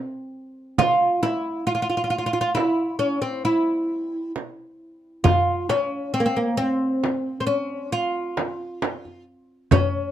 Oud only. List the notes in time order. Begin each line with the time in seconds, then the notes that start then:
0.79 F4
1.23 E4
1.67 F4
1.75 F4
1.82 F4
1.90 F4
1.97 F4
2.04 F4
2.10 F4
2.18 F4
2.26 F4
2.33 F4
2.41 F4
2.55 E4
2.99 C#4
3.22 C4
3.45 E4
5.24 F4
5.70 C#4
6.14 C4
6.20 A#3
6.26 C4
6.37 A#3
6.57 C4
7.40 C4
7.47 C#4
7.92 F4
9.72 C#4